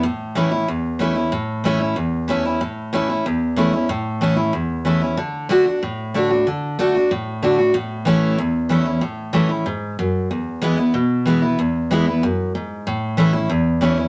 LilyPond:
\new Staff \with { instrumentName = "Steel-string acoustic guitar" } { \time 4/4 \key a \major \tempo 4 = 187 << { r4 <e a cis' e'>8 <cis' e'>8 r4 <e a cis' e'>8 <cis' e'>8 | r4 <e a cis' e'>8 <cis' e'>8 r4 <e a cis' e'>8 <cis' e'>8 | r4 <e a cis' e'>8 <cis' e'>8 r4 <e a cis' e'>8 <cis' e'>8 | r4 <e a cis' e'>8 <cis' e'>8 r4 <e a cis' e'>8 <cis' e'>8 |
r4 <d a d' fis'>8 <d' fis'>8 r4 <d a d' fis'>8 <d' fis'>8 | r4 <d a d' fis'>8 <d' fis'>8 r4 <d a d' fis'>8 <d' fis'>8 | r4 <e a cis' e'>4 r4 <e a cis' e'>8 <cis' e'>8 | r4 <e a cis' e'>8 <cis' e'>8 r2 |
r4 <e gis b e'>8 <b e'>8 r4 <e gis b e'>8 <b e'>8 | r4 <e gis b e'>8 <b e'>8 r2 | r4 <e a cis' e'>8 <cis' e'>8 r4 <e a cis' e'>8 <cis' e'>8 | } \\ { a,2 e,2 | a,2 e,2 | a,2 e,2 | a,2 e,2 |
d2 a,2 | d2 a,2 | a,2 e,2 | a,2 gis,4 fis,4 |
e,2 b,2 | e,2 fis,4 gis,4 | a,2 e,2 | } >> }